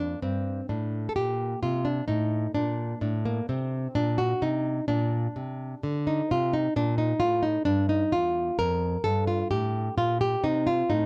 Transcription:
0.00 0.14 F2 medium
0.00 3.00 A#3 soft
0.00 0.22 D4 medium
0.22 0.60 G2 medium
0.22 0.68 C4 medium
0.69 1.07 A2 medium
0.69 1.08 D4 medium
1.09 1.15 A4 medium
1.16 1.54 A#2 medium
1.16 1.61 G4 medium
1.63 2.00 C3 medium
1.63 1.86 F4 medium
1.85 2.07 D4 medium
2.07 2.46 A2 medium
2.07 2.53 D#4 medium
2.54 2.93 A#2 medium
2.54 3.00 D4 medium
3.01 3.40 A2 medium
3.01 3.94 D4 soft
3.25 3.49 A#3 medium
3.49 3.87 C3 medium
3.49 3.94 C4 medium
3.95 4.33 A#2 medium
3.95 4.19 D4 loud
4.18 4.42 F#4 medium
4.42 4.80 C3 medium
4.42 4.87 D#4 medium
4.88 5.27 A#2 medium
4.88 6.02 D4 medium
5.36 5.74 C3 medium
5.83 6.20 D3 medium
6.07 6.30 D#4 medium
6.31 6.67 C3 medium
6.31 6.53 F4 medium
6.53 6.76 D#4 loud
6.76 7.12 A#2 medium
6.76 6.97 D4 loud
6.98 7.20 D#4 medium
7.20 7.57 A2 medium
7.20 7.43 F4 loud
7.43 7.65 D#4 medium
7.65 8.03 G2 medium
7.65 7.89 D4 loud
7.89 8.12 D#4 loud
8.12 8.50 E2 medium
8.12 8.57 F4 loud
8.59 8.96 F2 medium
8.59 9.03 A#4 loud
9.04 9.42 G2 medium
9.04 9.27 A4 loud
9.28 9.51 F4 medium
9.51 9.88 A2 medium
9.51 9.96 G4 loud
9.98 10.35 A#2 medium
9.98 10.21 F4 loud
10.21 10.44 G4 loud
10.44 10.82 C3 medium
10.44 11.06 C4 medium
10.44 10.68 D#4 loud
10.67 10.91 F4 loud
10.90 11.06 A2 medium
10.90 11.06 D#4 loud

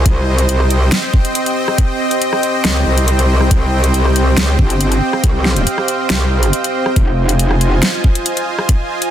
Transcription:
0.00 0.75 F4 medium
0.00 6.92 C5 medium
0.00 9.11 C5 medium
0.00 6.92 D#5 medium
0.05 0.90 C2 loud
0.05 8.34 C4 medium
0.05 6.92 C4 medium
0.05 6.92 G5 medium
0.05 kick loud
0.05 closed hi-hat medium
0.31 6.96 G4 medium
0.38 closed hi-hat soft
0.49 closed hi-hat medium
0.60 cross-stick medium
0.67 4.67 D#5 medium
0.67 closed hi-hat soft
0.92 snare loud
0.92 closed hi-hat medium
1.14 kick loud
1.25 closed hi-hat soft
1.35 closed hi-hat medium
1.46 closed hi-hat medium
1.68 cross-stick medium
1.78 kick loud
1.78 closed hi-hat medium
2.11 closed hi-hat soft
2.22 closed hi-hat medium
2.33 cross-stick medium
2.43 closed hi-hat soft
2.65 2.85 C#2 loud
2.65 snare loud
2.65 closed hi-hat medium
2.86 3.49 C2 loud
2.98 closed hi-hat soft
3.08 closed hi-hat medium
3.19 closed hi-hat medium
3.41 cross-stick medium
3.51 4.36 C2 loud
3.51 kick loud
3.51 closed hi-hat medium
3.84 closed hi-hat soft
3.94 closed hi-hat medium
4.05 cross-stick medium
4.16 closed hi-hat medium
4.37 4.57 C#2 loud
4.37 snare loud
4.37 closed hi-hat medium
4.53 8.68 F5 medium
4.59 5.00 G1 loud
4.59 kick medium
4.70 closed hi-hat soft
4.81 closed hi-hat medium
4.92 closed hi-hat medium
5.13 cross-stick medium
5.24 5.65 C2 loud
5.24 kick loud
5.24 closed hi-hat medium
5.45 snare medium
5.56 closed hi-hat medium
5.67 closed hi-hat medium
5.78 cross-stick medium
5.88 closed hi-hat medium
6.10 6.51 C2 loud
6.10 snare loud
6.10 closed hi-hat medium
6.43 closed hi-hat medium
6.53 closed hi-hat medium
6.64 closed hi-hat medium
6.86 cross-stick medium
6.96 7.81 F1 loud
6.96 9.11 F4 medium
6.96 9.11 C5 medium
6.96 9.11 D#5 medium
6.96 9.11 G#5 medium
6.96 kick loud
6.96 closed hi-hat medium
7.29 closed hi-hat medium
7.39 closed hi-hat medium
7.51 cross-stick medium
7.61 closed hi-hat medium
7.83 snare loud
7.83 closed hi-hat medium
8.04 kick loud
8.09 9.11 G#5 medium
8.15 closed hi-hat medium
8.26 closed hi-hat medium
8.37 closed hi-hat medium
8.59 cross-stick medium
8.69 kick loud
8.69 closed hi-hat medium
9.02 closed hi-hat medium

